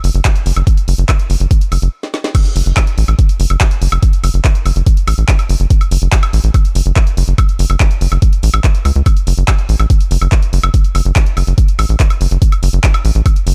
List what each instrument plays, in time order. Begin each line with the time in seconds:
0.04 analog synth bass F#1, open hi-hat
0.14 analog synth bass F#1, closed hi-hat
0.25 kick, clap, closed hi-hat
0.35 closed hi-hat
0.46 analog synth bass F#1, open hi-hat
0.56 analog synth bass F#1, closed hi-hat, high woodblock
0.67 kick, closed hi-hat
0.77 closed hi-hat
0.88 analog synth bass F#1, open hi-hat
0.98 analog synth bass F#1, closed hi-hat
1.09 kick, clap, closed hi-hat, high woodblock
1.19 closed hi-hat
1.30 analog synth bass F#1, open hi-hat
1.40 analog synth bass F#1, closed hi-hat
1.51 kick, closed hi-hat
1.61 closed hi-hat
1.72 analog synth bass F#1, open hi-hat, high woodblock
1.82 analog synth bass F#1, closed hi-hat
2.03 snare
2.14 snare
2.24 snare
2.35 kick, closed hi-hat, crash, high woodblock
2.45 closed hi-hat
2.56 analog synth bass F#1, open hi-hat
2.66 analog synth bass F#1, closed hi-hat
2.77 kick, clap, closed hi-hat, high woodblock
2.87 closed hi-hat
2.98 analog synth bass A1, open hi-hat
3.08 analog synth bass A1, closed hi-hat, high woodblock
3.19 kick, closed hi-hat
3.29 closed hi-hat
3.40 analog synth bass F#1, open hi-hat
3.50 analog synth bass F#1, closed hi-hat, high woodblock
3.61 kick, clap, closed hi-hat
3.71 closed hi-hat
3.82 analog synth bass F#1, open hi-hat
3.92 analog synth bass F#1, closed hi-hat, high woodblock
4.03 kick, closed hi-hat
4.13 closed hi-hat
4.24 analog synth bass F#1, open hi-hat, high woodblock
4.34 analog synth bass F#1, closed hi-hat
4.45 kick, clap, closed hi-hat
4.55 closed hi-hat
4.66 analog synth bass F#1, open hi-hat, high woodblock
4.76 analog synth bass F#1, closed hi-hat
4.87 kick, closed hi-hat
4.97 closed hi-hat
5.08 analog synth bass A1, open hi-hat, high woodblock
5.18 analog synth bass A1, closed hi-hat
5.28 kick, clap, closed hi-hat
5.39 closed hi-hat, high woodblock
5.49 analog synth bass F#1, open hi-hat
5.60 analog synth bass F#1, closed hi-hat
5.70 kick, closed hi-hat
5.81 closed hi-hat, high woodblock
5.91 analog synth bass F#1, open hi-hat
6.02 analog synth bass F#1, closed hi-hat
6.12 kick, clap, closed hi-hat
6.23 closed hi-hat, high woodblock
6.33 analog synth bass A1, open hi-hat
6.44 analog synth bass A1, closed hi-hat
6.54 kick, closed hi-hat, high woodblock
6.65 closed hi-hat
6.75 analog synth bass F#1, open hi-hat
6.86 analog synth bass F#1, closed hi-hat
6.96 kick, clap, closed hi-hat, high woodblock
7.07 closed hi-hat
7.17 analog synth bass F#1, open hi-hat
7.28 analog synth bass F#1, closed hi-hat
7.38 kick, closed hi-hat, high woodblock
7.49 closed hi-hat
7.59 analog synth bass F#1, open hi-hat
7.70 analog synth bass F#1, closed hi-hat, high woodblock
7.80 kick, clap, closed hi-hat
7.91 closed hi-hat
8.01 analog synth bass F#1, open hi-hat
8.12 analog synth bass F#1, closed hi-hat, high woodblock
8.22 kick, closed hi-hat
8.33 closed hi-hat
8.43 analog synth bass A1, open hi-hat
8.54 analog synth bass A1, closed hi-hat, high woodblock
8.64 kick, clap, closed hi-hat
8.75 closed hi-hat
8.85 analog synth bass C#2, open hi-hat, high woodblock
8.96 analog synth bass C#2, closed hi-hat
9.06 kick, closed hi-hat, high woodblock
9.17 closed hi-hat
9.27 analog synth bass F#1, open hi-hat
9.38 analog synth bass F#1, closed hi-hat
9.48 kick, clap, closed hi-hat, high woodblock
9.59 closed hi-hat
9.69 analog synth bass A1, open hi-hat
9.80 analog synth bass A1, closed hi-hat, high woodblock
9.90 kick, closed hi-hat
10.00 closed hi-hat
10.11 analog synth bass F#1, open hi-hat
10.21 analog synth bass F#1, closed hi-hat, high woodblock
10.32 kick, clap, closed hi-hat
10.42 closed hi-hat
10.53 analog synth bass F#1, open hi-hat
10.63 analog synth bass F#1, closed hi-hat, high woodblock
10.74 kick, closed hi-hat
10.84 closed hi-hat
10.95 analog synth bass F#1, open hi-hat, high woodblock
11.05 analog synth bass F#1, closed hi-hat
11.16 kick, clap, closed hi-hat
11.26 closed hi-hat
11.37 analog synth bass F#1, open hi-hat, high woodblock
11.47 analog synth bass F#1, closed hi-hat
11.58 kick, closed hi-hat
11.68 closed hi-hat
11.79 analog synth bass A1, open hi-hat, high woodblock
11.89 analog synth bass A1, closed hi-hat
12.00 kick, clap, closed hi-hat
12.10 closed hi-hat, high woodblock
12.21 analog synth bass F#1, open hi-hat
12.31 analog synth bass F#1, closed hi-hat
12.42 kick, closed hi-hat
12.52 closed hi-hat, high woodblock
12.63 analog synth bass F#1, open hi-hat
12.73 analog synth bass F#1, closed hi-hat
12.84 kick, clap, closed hi-hat
12.94 closed hi-hat, high woodblock
13.05 analog synth bass A1, open hi-hat
13.15 analog synth bass A1, closed hi-hat
13.26 kick, closed hi-hat, high woodblock
13.36 closed hi-hat
13.47 analog synth bass F#1, open hi-hat